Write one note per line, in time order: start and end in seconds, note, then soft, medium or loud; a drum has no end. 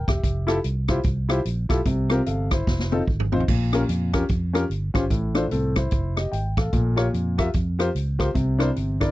0.08 0.21 E1 medium
0.08 0.46 G4 medium
0.08 0.46 E5 medium
0.08 kick medium
0.08 cross-stick loud
0.08 closed hi-hat medium
0.24 0.58 F1 medium
0.24 kick medium
0.24 closed hi-hat medium
0.47 0.56 E4 medium
0.47 0.56 F4 medium
0.47 0.56 G4 medium
0.47 0.56 A4 medium
0.47 cross-stick loud
0.47 closed hi-hat medium
0.64 0.99 C2 medium
0.64 closed hi-hat medium
0.88 0.97 E4 medium
0.88 0.97 F4 medium
0.88 0.97 G4 medium
0.88 0.97 C5 medium
0.88 kick medium
0.88 cross-stick loud
0.88 closed hi-hat medium
1.03 1.39 C2 medium
1.03 kick loud
1.03 closed hi-hat medium
1.29 1.37 E4 medium
1.29 1.37 F4 medium
1.29 1.38 G4 medium
1.29 1.38 C5 medium
1.29 cross-stick loud
1.29 closed hi-hat medium
1.45 1.66 A#1 medium
1.45 closed hi-hat medium
1.69 1.83 B1 medium
1.69 1.78 E4 medium
1.69 1.78 F4 medium
1.69 1.78 G4 medium
1.69 1.78 A4 medium
1.69 kick medium
1.69 cross-stick loud
1.69 closed hi-hat medium
1.85 2.20 C2 loud
1.85 2.47 C3 medium
1.85 kick medium
1.85 closed hi-hat medium
2.10 2.18 C4 medium
2.10 2.19 F4 medium
2.10 2.19 G4 medium
2.10 2.19 A#4 medium
2.10 cross-stick loud
2.10 closed hi-hat medium
2.26 2.61 G1 medium
2.26 2.50 A4 medium
2.26 2.50 F5 medium
2.26 closed hi-hat medium
2.51 2.90 E4 medium
2.51 2.90 C5 medium
2.51 kick medium
2.51 cross-stick loud
2.51 closed hi-hat medium
2.67 3.02 F1 medium
2.67 kick medium
2.67 snare soft
2.79 snare medium
2.92 3.00 C4 medium
2.92 3.00 D#4 medium
2.92 3.00 F4 medium
2.92 3.00 A4 medium
2.92 high tom medium
3.07 3.28 G#1 medium
3.07 kick medium
3.20 mid tom medium
3.32 3.46 A1 medium
3.32 3.40 C4 medium
3.32 3.40 D#4 medium
3.32 3.41 F4 medium
3.32 3.41 C5 medium
3.32 floor tom medium
3.40 floor tom medium
3.48 3.83 A#1 medium
3.48 4.10 A#2 medium
3.48 kick medium
3.48 crash medium
3.73 3.81 C#4 medium
3.73 3.81 F4 medium
3.73 3.81 G4 medium
3.73 3.81 A#4 medium
3.73 cross-stick loud
3.73 closed hi-hat soft
3.89 4.23 F2 medium
3.89 closed hi-hat loud
4.13 4.21 C#4 medium
4.13 4.21 F4 medium
4.13 4.22 G4 medium
4.13 4.22 A#4 medium
4.13 kick medium
4.13 cross-stick loud
4.13 closed hi-hat medium
4.29 4.64 F2 medium
4.29 kick medium
4.29 closed hi-hat medium
4.53 4.62 C#4 medium
4.53 4.62 F4 medium
4.53 4.62 G4 medium
4.53 4.62 A#4 medium
4.53 cross-stick medium
4.53 closed hi-hat medium
4.70 4.91 G1 medium
4.70 closed hi-hat medium
4.94 5.08 G#1 medium
4.94 5.02 C#4 medium
4.94 5.02 F4 medium
4.94 5.02 G4 medium
4.94 5.03 C5 medium
4.94 kick medium
4.94 cross-stick loud
4.94 closed hi-hat medium
5.10 5.45 A1 loud
5.10 5.72 A2 medium
5.10 kick medium
5.10 closed hi-hat medium
5.35 5.43 D4 medium
5.35 5.43 F4 medium
5.35 5.43 A4 medium
5.35 5.43 C5 medium
5.35 cross-stick loud
5.35 closed hi-hat medium
5.51 5.86 C2 medium
5.51 5.75 C4 soft
5.51 5.75 A4 medium
5.51 closed hi-hat medium
5.76 6.15 E4 medium
5.76 6.15 C5 medium
5.76 kick medium
5.76 cross-stick medium
5.76 closed hi-hat medium
5.91 6.26 F1 medium
5.91 kick loud
5.91 closed hi-hat medium
6.16 6.32 G4 soft
6.16 6.31 D#5 medium
6.16 cross-stick medium
6.16 closed hi-hat medium
6.32 6.53 G#1 medium
6.32 6.55 G5 medium
6.32 closed hi-hat medium
6.57 6.71 A1 medium
6.57 6.96 A4 medium
6.57 6.96 F5 medium
6.57 kick medium
6.57 cross-stick loud
6.57 closed hi-hat medium
6.73 7.07 A#1 loud
6.73 7.34 A#2 medium
6.73 kick medium
6.73 closed hi-hat medium
6.96 7.05 F4 medium
6.96 7.05 G4 medium
6.96 7.05 A#4 medium
6.96 7.05 C#5 medium
6.96 cross-stick loud
6.96 closed hi-hat medium
7.14 7.48 F2 medium
7.14 closed hi-hat medium
7.38 7.46 F4 medium
7.38 7.46 G4 medium
7.38 7.46 A#4 medium
7.38 7.47 E5 medium
7.38 kick medium
7.38 cross-stick loud
7.38 closed hi-hat medium
7.54 7.89 F2 medium
7.54 kick loud
7.54 closed hi-hat medium
7.79 7.87 F4 medium
7.79 7.87 G4 medium
7.79 7.87 A#4 medium
7.79 7.87 C5 medium
7.79 cross-stick medium
7.79 closed hi-hat medium
7.95 8.29 C#2 medium
7.95 closed hi-hat medium
8.19 8.27 F4 medium
8.19 8.27 G4 medium
8.19 8.27 A#4 medium
8.19 8.28 C5 medium
8.19 kick medium
8.19 cross-stick medium
8.19 closed hi-hat medium
8.34 8.70 C2 loud
8.34 8.96 C3 medium
8.34 kick medium
8.34 closed hi-hat medium
8.59 8.67 D4 medium
8.59 8.67 E4 medium
8.59 8.68 A#4 medium
8.59 8.68 C5 medium
8.59 cross-stick loud
8.59 closed hi-hat medium
8.76 9.11 G1 medium
8.76 closed hi-hat medium
9.00 9.09 D4 medium
9.00 9.09 E4 medium
9.00 9.09 A#4 medium
9.00 9.09 D5 medium
9.00 kick medium
9.00 cross-stick loud
9.00 closed hi-hat medium